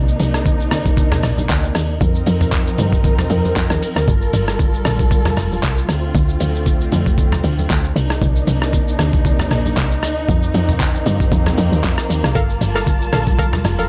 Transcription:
Already playing: C2 C3 A#3 D4 D#4
0.08 shaker
0.20 C2, open hi-hat, high conga, shaker
0.34 cross-stick, shaker
0.45 kick, low conga, shaker
0.60 shaker
0.71 D2, cross-stick, open hi-hat, low conga, shaker
0.86 kick, high conga, shaker
0.97 kick, low conga, shaker
1.12 cross-stick, mid tom, high conga, shaker
1.23 A#1, cross-stick, open hi-hat, shaker
1.38 high conga, shaker
1.49 D2, kick, clap, shaker
1.63 shaker
1.75 D#2, cross-stick, open hi-hat, shaker
2.01 F2 F3 C4 D#4 A#4, kick, low conga, shaker
2.15 shaker
2.26 F2, open hi-hat, high conga, shaker
2.41 mid tom, shaker
2.52 kick, clap, shaker
2.67 shaker
2.78 G2, open hi-hat, low conga, shaker
2.93 kick, high conga, shaker
3.04 kick, low conga, shaker
3.18 cross-stick, mid tom, high conga, shaker
3.30 F2, open hi-hat, shaker
3.45 high conga, shaker
3.56 F2, kick, clap, shaker
3.70 D#2, cross-stick, shaker
3.82 open hi-hat, high conga, shaker
3.96 D2, cross-stick, shaker
4.08 G1 G3 F4 A4, kick, low conga, shaker
4.22 shaker
4.33 G1, open hi-hat, high conga, shaker
4.48 cross-stick, shaker
4.59 kick, low conga, shaker
4.74 shaker
4.85 A#1, cross-stick, open hi-hat, low conga, shaker
4.99 kick, high conga, shaker
5.11 kick, low conga, shaker
5.25 cross-stick, mid tom, high conga, shaker
5.37 F1, cross-stick, open hi-hat, shaker
5.52 high conga, shaker
5.63 C2, kick, clap, shaker
5.77 shaker
5.89 D2 D3 A3 C4, cross-stick, open hi-hat, shaker
6.15 D2, kick, low conga, shaker
6.29 shaker
6.40 D2, open hi-hat, high conga, shaker
6.55 shaker
6.66 kick, low conga, shaker
6.81 shaker
6.92 F2, open hi-hat, low conga, shaker
7.06 kick, high conga, shaker
7.18 kick, low conga, shaker
7.32 cross-stick, mid tom, high conga, shaker
7.44 D2, open hi-hat, shaker
7.58 high conga, shaker
7.70 D2, kick, clap, shaker
7.84 shaker
7.96 C2 C3 A#3 D4 D#4, open hi-hat, shaker
8.10 cross-stick
8.21 C2, kick, low conga, shaker
8.35 shaker
8.47 C2, open hi-hat, high conga, shaker
8.62 cross-stick, shaker
8.73 kick, low conga, shaker
8.88 shaker
8.99 D2, cross-stick, open hi-hat, low conga, shaker
9.13 kick, high conga, shaker
9.25 kick, low conga, shaker
9.39 cross-stick, mid tom, high conga, shaker
9.51 A#1, cross-stick, open hi-hat, shaker
9.65 high conga, shaker
9.77 C2, kick, clap, shaker
9.91 shaker
10.03 D2, cross-stick, open hi-hat, shaker
10.29 F2 F3 A#3 C4, kick, low conga, shaker
10.42 shaker
10.54 F2, open hi-hat, high conga, shaker
10.69 mid tom, shaker
10.79 kick, clap, low conga, shaker
10.95 shaker
11.06 G2, open hi-hat, low conga, shaker
11.20 kick, high conga, shaker
11.32 F2, kick, low conga, shaker
11.46 cross-stick, mid tom, high conga, shaker
11.58 F2, open hi-hat, shaker
11.72 D#2, high conga, shaker
11.84 F2, kick, clap, shaker
11.98 cross-stick, shaker
12.10 D#2, open hi-hat, shaker
12.24 C2, cross-stick, shaker
12.35 G1 G3 F4 A4 A#4 F5 A5, kick, low conga, shaker
12.49 shaker
12.61 G1, open hi-hat, high conga, shaker
12.75 A4 A#4 F5, cross-stick, shaker
12.86 kick, low conga, shaker
13.01 shaker
13.13 A#1 A4 A#4 F5, cross-stick, open hi-hat, low conga, shaker
13.27 kick, high conga, shaker
13.39 A4 A#4 F5, kick, low conga, shaker
13.53 cross-stick, mid tom, high conga, shaker
13.64 F1, cross-stick, open hi-hat, shaker
13.79 A4 A#4 F5, high conga, shaker

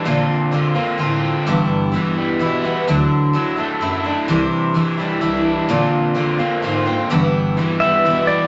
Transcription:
Already playing: D4
0.05 A#2 D3 A#3 C4 F4
0.52 D3 A#3 C4 F4
0.75 A#3 C4 F4
0.98 A2 D3 C4 F4
1.23 C4
1.46 G2 D3 E3 G3 B3 E4
1.92 E3 G3 B3 E4
2.18 G3
2.39 B2 E3 G3 B3 E4
2.64 E3 G3 B3 E4
2.88 D2 D3 F#3 A3 D4 E4
3.33 F#3 A3 D4 E4
3.57 A3 D4 E4
3.81 F#2 F#3 A3 D4 E4
4.04 A3 D4 E4
4.28 C2 C3 E3 G3 D4 E4
4.74 E3 G3 D4 E4
4.98 G3 D4 E4
5.21 C2 E3 G3 D4 E4
5.45 D4
5.68 A#2 D3 A#3 C4 F4
6.14 D3 A#3 C4 F4
6.38 A#3 C4 F4
6.62 G#2 D3 A#3 C4 F4
6.86 A#3 C4 F4
7.10 G2 D3 E3 G3 B3 E4
7.57 E3 G3 B3 E4
7.80 E3 G3 B3 E4 E5
8.05 B2 E3 G3 B3 E4
8.27 E3 G3 B3 E4 D5

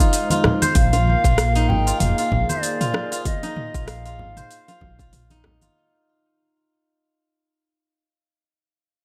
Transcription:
Already playing: G#3 D#4 F4 C5 F5
0.00 F4, shaker
0.13 open hi-hat, shaker
0.30 F4, open hi-hat, high bongo, high conga, shaker
0.44 cross-stick, mid tom, low conga
0.62 C5, open hi-hat, high conga, shaker
0.75 A#1 A#3 F5, kick, open hi-hat, high conga, shaker
0.93 F4, open hi-hat, high bongo, shaker
1.07 high conga
1.22 A#1 F4 G#4, kick, mid tom, shaker
1.38 cross-stick, open hi-hat, shaker
1.55 D#4, open hi-hat, shaker
1.69 G#1 G5, high conga, low conga
1.87 F4, shaker
2.00 F1 F5, mid tom, open hi-hat, shaker
2.18 F4, open hi-hat, shaker
2.32 A#1, kick, low conga
2.49 C5, open hi-hat, high conga, shaker
2.62 D5, open hi-hat, shaker
2.81 F4, mid tom, open hi-hat, shaker
2.94 cross-stick, high bongo
3.12 F4, open hi-hat, shaker
3.25 D#5, kick, open hi-hat, high conga, shaker
3.43 D#4, open hi-hat, high bongo, shaker
3.56 mid tom, high conga
3.74 A#1 F4, kick, open hi-hat, shaker
3.87 F5, cross-stick, open hi-hat, shaker
4.05 F4, open hi-hat, shaker
4.19 G#1, high conga, low conga
4.37 C5, mid tom, open hi-hat, shaker
4.51 open hi-hat, shaker
4.68 F4, open hi-hat, high bongo, shaker
4.81 A#1, kick, low conga
4.99 F4, kick, open hi-hat, high bongo, shaker
5.13 mid tom, open hi-hat, shaker
5.30 D#4, open hi-hat, high bongo, high conga, shaker
5.44 cross-stick, low conga
5.61 F4, open hi-hat, high conga, shaker

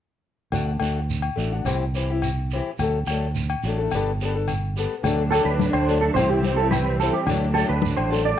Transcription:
0.52 D2 A3 D4 F#4, low agogo, shekere
0.79 D2 A3 D4 F#4, low agogo, shekere
1.10 shekere
1.22 low agogo
1.36 A1 A3 D4, shekere
1.40 F#4
1.52 D4 F#4
1.65 C2 E3 C4 E4 G4, low agogo, shekere
1.95 E3 C4 E4 G4, shekere
2.10 E4 G4
2.14 C4
2.22 low agogo, shekere
2.51 E3 C4, shekere
2.55 E4 G4
2.79 D2 F#3 A3, muted steel-string acoustic guitar stroke, low agogo, shekere
2.83 A4
3.07 D2 F#3, low agogo, shekere
3.11 A3 D4 A4
3.35 shekere
3.50 low agogo
3.63 A1 F#3 A3, shekere
3.68 D4 A4
3.78 D4 A4
3.83 A3
3.91 G1 G3 B3 D4, low agogo, shekere
3.96 A4
4.21 G3 B3 D4 A4, shekere
4.35 D4 A4
4.48 low agogo, shekere
4.76 G3 B3 A4, muted steel-string acoustic guitar stroke, shekere
5.03 D2 F#3 A3 D4 A4, muted conga, low agogo, shekere
5.31 F#3 A3 D4 A4, muted conga, low agogo, shekere
5.35 A4
5.45 D2 B4
5.59 high conga, shekere
5.73 D2 C5, low agogo
5.89 F#3 A3 D4 A4, shekere
6.01 A4
6.14 C2 E3 G3 C4 C5, muted steel-string acoustic guitar stroke, muted conga, low agogo, shekere
6.18 E4 G4
6.29 C4 E4 G4
6.43 C4 E4, muted steel-string acoustic guitar stroke, high conga, shekere
6.47 G4
6.57 G4 A4
6.61 C4 E4
6.71 B4, high conga, low agogo, shekere
6.99 E3 C4 E4 G4 A4, muted conga, shekere
7.13 G4
7.27 D2 F#3 A3 D4 A4, muted conga, low agogo, shekere
7.54 F#3 A3 A4, muted conga, low agogo, shekere
7.59 A4, muted steel-string acoustic guitar stroke
7.69 D2 B4
7.82 high conga, shekere
7.97 A1 C5, low agogo
8.10 F#3 D4 A4, shekere
8.25 D5

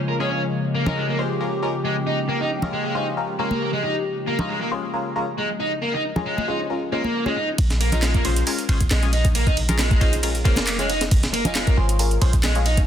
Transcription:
Already playing: C#3 F3 G#3 A#3 F4
0.09 A#4
0.20 G#3 C#4 F4 G#4
0.30 C#4
0.52 G4
0.75 A#3
0.86 G#3 C#4 D#4 F4 A#4, low conga
0.96 G#3
1.08 A#3
1.19 G#3 C#4 F4 C5
1.40 G#3 C#4 F4 A#4
1.62 G#3 C#4 F4 A#4
1.85 G#3
2.07 D#4
2.29 A#3
2.41 D#4
2.62 G#3 C#4 F4 A#4, low conga
2.73 G#3
2.85 G#3
2.95 G#3 C#4 D#4 F4 C5
3.17 G#3 C#4 F4 A#4
3.39 G#3 A#3 C#4 F4 A#4
3.51 high conga
3.73 G#3
3.83 D#4
4.27 A#3
4.39 G#3 C#4 D#4 F4 A#4, low conga
4.49 G#3
4.61 A#3
4.71 G#3 C#4 F4 C5
4.94 G#3 C#4 F4 A#4
5.16 G#3 C#4 F4 A#4
5.38 G#3
5.60 D#4
5.82 A#3
5.94 D#4
6.16 G#3 C#4 F4 A#4, low conga
6.26 G#3
6.38 G#3, high conga
6.48 G#3 C#4 D#4 F4 C5
6.70 G#3 C#4 F4 A#4
6.92 G#3 A#3 C#4 F4 C5
7.04 high conga
7.26 G#3 C#4 F4 G#4, high conga
7.36 D#4
7.58 A#1, kick, closed hi-hat, ride
7.70 snare, closed hi-hat
7.81 A#3, ride
7.92 G#3 C#4 D#4 F4 A#4, closed hi-hat, low conga
8.03 G#3, snare, clap, closed hi-hat, ride
8.14 A#3, kick, closed hi-hat
8.25 G#3 C#4 F4 C5, ride
8.36 closed hi-hat
8.47 G#3 C#4 F4 A#4, closed hi-hat, open hi-hat
8.58 closed hi-hat
8.69 G#1 G#3 C#4 F4 C5, ride
8.81 kick, closed hi-hat
8.91 A#1 G#3, snare, clap, closed hi-hat, ride
9.03 G#3 C#4 F4 G#4, closed hi-hat
9.13 D#4, ride
9.25 kick, closed hi-hat
9.35 A#3, closed hi-hat, ride
9.47 D#4, kick, closed hi-hat
9.57 ride
9.69 G#3 C#4 F4 A#4, closed hi-hat, low conga
9.79 G#3, snare, clap, closed hi-hat, ride
9.91 G#3, kick, closed hi-hat, high conga
10.01 G#3 C#4 D#4 F4 C5, kick, ride
10.13 closed hi-hat
10.23 G#3 C#4 F4 A#4, closed hi-hat, ride
10.35 closed hi-hat
10.45 F1 G#3 A#3 C#4 F4 C5, kick, ride
10.56 snare, closed hi-hat, high conga
10.67 clap, closed hi-hat, ride
10.79 G#3 C#4 F4 G#4, closed hi-hat
10.89 D#4, ride
11.01 snare, closed hi-hat
11.11 kick, closed hi-hat, ride
11.23 snare, closed hi-hat
11.33 A#3, ride
11.45 G#3 C#4 D#4 F4 A#4, closed hi-hat, low conga
11.55 G#3, snare, clap, closed hi-hat, ride
11.67 A#3, kick, closed hi-hat
11.77 G#1 G#3 C#4 F4 C5
11.89 closed hi-hat
11.99 G#3 C#4 F4 A#4, closed hi-hat, open hi-hat
12.11 closed hi-hat
12.21 A#1 G#3 C#4 F4 C5, ride
12.33 kick, closed hi-hat
12.44 G#3, snare, clap, closed hi-hat, ride
12.55 G#3 C#4 F4 G#4, closed hi-hat
12.66 D#4, ride
12.77 kick, closed hi-hat

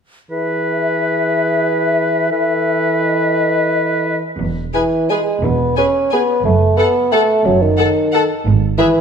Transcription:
0.31 E3 G#4 B4 E5
2.30 E3 A4 B4
3.00 D#5
4.39 E1 E2
4.74 E3 G#4 B4 G#5
5.10 G#3 G#4 B4 G#5
5.44 E1 E2 B3
5.77 C#4 G#4 B4 G#5
6.12 B3 G#4 B4 G#5
6.45 F#1 F#2 A3
6.78 B3 A4 F#5
7.13 A3 A4 F#5
7.45 F#1 F#2 F#3
7.63 D#3
7.78 A4 F#5
8.13 A4 F#5
8.46 G#1 G#2
8.78 E3 G#4 B4 E5

